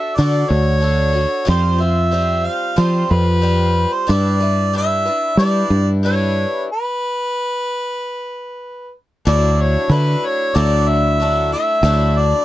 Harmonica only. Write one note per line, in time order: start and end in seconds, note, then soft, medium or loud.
0.00 0.17 E5 loud
0.15 0.51 D5 medium
0.49 1.47 C#5 loud
1.49 1.83 C5 loud
1.81 2.47 E5 loud
2.46 2.80 F5 loud
2.79 3.13 C5 loud
3.11 3.94 B4 loud
3.92 4.13 C5 medium
4.11 4.75 D5 loud
4.77 5.36 E5 loud
5.38 5.88 D5 loud
6.05 6.65 C#5 loud
6.73 8.92 B4 medium
9.27 9.63 D5 loud
9.61 9.94 C#5 medium
9.93 10.28 B4 medium
10.26 10.57 C#5 medium
10.56 10.90 D5 loud
10.88 11.52 E5 loud
11.53 12.20 E5 loud
12.18 12.45 D5 loud